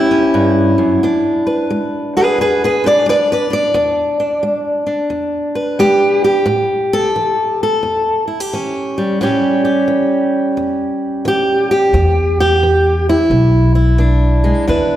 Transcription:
Already playing: steel-string acoustic guitar E2 E4 G4
0.11 steel-string acoustic guitar C#4
0.34 steel-string acoustic guitar G2
0.78 steel-string acoustic guitar F#2
1.03 steel-string acoustic guitar E2 D4
1.47 steel-string acoustic guitar B4
1.70 steel-string acoustic guitar G#3
2.17 steel-string acoustic guitar G#4 B4
2.38 steel-string acoustic guitar E2 G#4 B4
2.64 steel-string acoustic guitar G#4 B4
2.84 steel-string acoustic guitar D4 D5
3.06 steel-string acoustic guitar G#3 B4 D5
3.32 steel-string acoustic guitar B4 D5
3.50 steel-string acoustic guitar D4 D5
3.74 steel-string acoustic guitar E2 D4
4.20 steel-string acoustic guitar D4
4.43 steel-string acoustic guitar G#3
4.87 steel-string acoustic guitar D4
5.10 steel-string acoustic guitar E2
5.55 steel-string acoustic guitar B4
5.79 steel-string acoustic guitar G#3 G4
6.24 steel-string acoustic guitar G4
6.46 steel-string acoustic guitar A2
6.93 steel-string acoustic guitar A4
7.16 steel-string acoustic guitar E3
7.63 steel-string acoustic guitar A4
7.83 steel-string acoustic guitar E2
8.28 steel-string acoustic guitar E4
8.40 steel-string acoustic guitar G4
8.53 steel-string acoustic guitar E3 C#4
8.98 steel-string acoustic guitar G3
9.21 steel-string acoustic guitar A2 G3 C#4 G4
9.65 steel-string acoustic guitar G4
9.88 steel-string acoustic guitar E3
10.57 steel-string acoustic guitar E2
11.25 steel-string acoustic guitar E3 G4
11.71 steel-string acoustic guitar G4
11.93 upright bass E2, steel-string acoustic guitar E2
12.40 steel-string acoustic guitar G4
12.63 steel-string acoustic guitar E3
13.09 steel-string acoustic guitar E4
13.30 upright bass B1, steel-string acoustic guitar B2
13.75 steel-string acoustic guitar E4
13.98 steel-string acoustic guitar E3 D4
14.44 steel-string acoustic guitar G#3
14.67 steel-string acoustic guitar E2 D4 E4 B4, upright bass E2

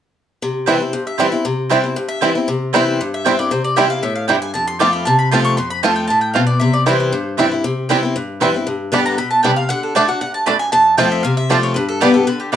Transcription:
0.42 steel-string acoustic guitar C3
0.66 steel-string acoustic guitar E3 G3 C4 E4, five-string banjo G3 C4 E4, mandolin C4 E4 C5 G5
0.80 steel-string acoustic guitar C4 E4
0.93 steel-string acoustic guitar G2
1.07 mandolin E5
1.18 steel-string acoustic guitar E3 G3 C4 E4, five-string banjo G3 C4 E4, mandolin C4 E4 C5 G5
1.32 steel-string acoustic guitar C4 E4
1.45 steel-string acoustic guitar C3
1.69 steel-string acoustic guitar E3 G3 C4 E4, five-string banjo G3 C4 E4, mandolin C4 E4 C5 G5
1.84 steel-string acoustic guitar C4 E4
1.96 steel-string acoustic guitar G2
2.09 mandolin E5
2.21 steel-string acoustic guitar E3 G3 C4 E4, five-string banjo G3 C4 E4, mandolin C4 E4 C5 G5
2.35 steel-string acoustic guitar C4 E4
2.48 steel-string acoustic guitar C3
2.73 steel-string acoustic guitar E3 G3 C4 E4, five-string banjo G3 C4 E4, mandolin C4 E4 C5 G5
3.01 steel-string acoustic guitar G2
3.14 mandolin E5
3.25 steel-string acoustic guitar E3 G3 C4 E4, five-string banjo G3 C4 E4, mandolin C4 E4 C5 G5
3.39 steel-string acoustic guitar C4 E4, mandolin D5
3.51 steel-string acoustic guitar C3, mandolin C5
3.64 mandolin D5
3.76 steel-string acoustic guitar E3 G3 C4 E4, five-string banjo G3 C4 E4, mandolin C4 E4 C5 E5 G5
3.90 steel-string acoustic guitar C4 E4, mandolin F5
4.03 steel-string acoustic guitar A2, mandolin E5
4.15 mandolin F5
4.28 steel-string acoustic guitar G2, five-string banjo G3 C4 E4, mandolin C4 E4 C5 G5
4.42 mandolin G#5
4.54 steel-string acoustic guitar F2, mandolin A5
4.67 mandolin C6
4.79 steel-string acoustic guitar F3 A3 C4 F4, five-string banjo A3 C4 F4, mandolin C4 F4 C5 A5 D6
4.93 mandolin B5
5.05 steel-string acoustic guitar C3, mandolin A5
5.19 mandolin B5
5.31 steel-string acoustic guitar F3 A3 C4 F4, five-string banjo A3 C4 F4, mandolin C4 F4 C5 A5 C6
5.45 mandolin C#6
5.57 steel-string acoustic guitar F2, mandolin C6
5.70 mandolin B5
5.83 steel-string acoustic guitar F3 A3 C4 F4, five-string banjo A3 C4 F4, mandolin C4 F4 C5 A5
5.96 mandolin G5
6.07 steel-string acoustic guitar A2, mandolin A5
6.21 mandolin G5
6.34 steel-string acoustic guitar B2, five-string banjo A3 C4 F4, mandolin C4 F4 C5 F5 A5
6.47 mandolin D5
6.60 steel-string acoustic guitar C3, mandolin E5
6.73 mandolin D5
6.86 steel-string acoustic guitar E3 G3 C4 E4, five-string banjo G3 C4 E4, mandolin C4 E4 C5 G5
7.00 mandolin C5
7.12 steel-string acoustic guitar G2
7.37 steel-string acoustic guitar E3 G3 C4 E4, five-string banjo G3 C4 E4, mandolin C4 E4 C5 G5
7.51 steel-string acoustic guitar C4 E4
7.64 steel-string acoustic guitar C3
7.89 steel-string acoustic guitar E3 G3 C4 E4, five-string banjo G3 C4 E4, mandolin C4 E4 C5 G5
8.03 steel-string acoustic guitar C4 E4
8.16 steel-string acoustic guitar G2
8.40 steel-string acoustic guitar E3 G3 C4 E4, five-string banjo G3 C4 E4, mandolin C4 E4 C5 G5
8.54 steel-string acoustic guitar C4 E4
8.67 steel-string acoustic guitar G2
8.92 steel-string acoustic guitar D3 G3 B3 G4, five-string banjo G3 B3 D4, mandolin B3 G4 D5 G5
9.06 mandolin A#5
9.18 steel-string acoustic guitar B2, mandolin B5
9.31 mandolin A5
9.43 steel-string acoustic guitar C3, five-string banjo G3 B3 D4, mandolin B3 G4 D5 G5
9.56 mandolin F5
9.69 steel-string acoustic guitar D3, mandolin F#5
9.83 mandolin A4
9.95 steel-string acoustic guitar D3 A3 D4 F#4, mandolin A3 F#4 D5 A5, five-string banjo A3 D4
10.08 steel-string acoustic guitar D4 F#4, mandolin F#5
10.21 steel-string acoustic guitar G2, mandolin F#5
10.34 mandolin A5
10.46 steel-string acoustic guitar F#2, mandolin A3 F#4 D5 A5 B5, five-string banjo A3 D4
10.59 mandolin G#5
10.72 steel-string acoustic guitar F2, mandolin A5
10.97 steel-string acoustic guitar F3 A3 C4 F4, five-string banjo A3 C4 F4, mandolin C4 F4 C5 G5 A5
11.12 mandolin E5
11.23 steel-string acoustic guitar C3, mandolin F5
11.37 mandolin E5
11.49 steel-string acoustic guitar F3 A3 C4 F4, five-string banjo A3 C4 F4, mandolin C4 F4 C5 D5 A5
11.63 mandolin C#5
11.74 steel-string acoustic guitar G2, mandolin B4
11.89 mandolin A4
12.00 steel-string acoustic guitar D3 G3 B3 G4, five-string banjo G3 B3 D4, mandolin B3 F4 G4 D5 G5
12.14 steel-string acoustic guitar B3 G4, mandolin A4
12.27 steel-string acoustic guitar D3, mandolin B4
12.40 mandolin G4
12.52 steel-string acoustic guitar D3, mandolin B3 F4 G4 D5 G5

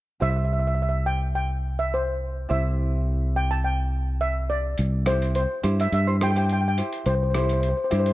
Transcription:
0.20 fingered electric bass C2, ukulele E4 G4 C5, steel pan E5
0.30 steel pan E5
0.36 steel pan E5
0.45 steel pan E5
0.53 steel pan E5
0.60 steel pan E5
0.67 steel pan E5
0.75 steel pan E5
0.82 steel pan E5
0.89 steel pan E5
1.06 steel pan G5
1.35 steel pan G5
1.79 steel pan E5
1.94 steel pan C5
2.49 fingered electric bass C2, ukulele E4 G4 C5, steel pan E5
3.36 steel pan G5
3.51 steel pan A5
3.64 steel pan G5
4.21 steel pan E5
4.50 steel pan D5
4.78 fingered electric bass C2, closed hi-hat
5.06 ukulele E4 G4 C5, steel pan C5, cross-stick, closed hi-hat
5.22 closed hi-hat
5.35 steel pan C5, closed hi-hat
5.63 fingered electric bass G2, ukulele E4 G4 C5, closed hi-hat
5.80 steel pan E5, closed hi-hat
5.92 fingered electric bass G2, steel pan E5, closed hi-hat
6.07 ukulele E4 G4 C5
6.21 ukulele E4 G4 C5, steel pan G5, cross-stick, closed hi-hat
6.31 steel pan G5
6.35 ukulele E4 G4 C5, steel pan G5, closed hi-hat
6.45 steel pan G5
6.49 steel pan G5, closed hi-hat
6.61 steel pan G5
6.68 steel pan G5
6.78 ukulele E4 G4 C5, closed hi-hat
6.93 closed hi-hat
7.06 fingered electric bass C2, steel pan C5, closed hi-hat
7.15 steel pan C5
7.23 steel pan C5
7.30 ukulele G4, steel pan C5
7.34 ukulele E4 C5, steel pan C5, cross-stick, closed hi-hat
7.46 steel pan C5, closed hi-hat
7.53 steel pan C5
7.61 steel pan C5, closed hi-hat
7.69 steel pan C5
7.77 steel pan C5
7.84 steel pan C5
7.91 fingered electric bass G2, ukulele E4 G4 C5, steel pan C5, closed hi-hat
8.00 steel pan C5
8.06 steel pan C5, closed hi-hat

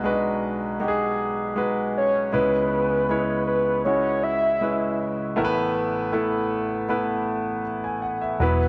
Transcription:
Already playing: grand piano B1 B2 G#3 D#4 F#4 B4
0.04 grand piano G#3 D4 F#4 B4
0.11 grand piano D#4
0.80 grand piano G#3 D#4 F#4 G4
0.88 grand piano G#4
1.56 grand piano G#3 D#4 F#4 B4
1.97 soft synth lead C#5
2.32 grand piano C#2 C#3 G#3 C#4 E4 B4, soft synth lead B4
3.09 grand piano G#3 C#4 E4 C#5
3.47 soft synth lead B4
3.85 grand piano G#3 C#4 E4 F#4, soft synth lead C#5
4.23 soft synth lead E5
4.61 grand piano G#3 C#4 E4 B4
5.36 grand piano A1 A2 A3 B3 E4 A#4
5.45 grand piano B4
6.12 grand piano A3 B3 E4 A4
6.89 grand piano A3 B3 E4 B4
7.84 grand piano G#5
8.02 grand piano F#5
8.21 grand piano E5
8.40 fingered electric bass E1, grand piano F#3 B3 E4 B4, soft synth lead B4

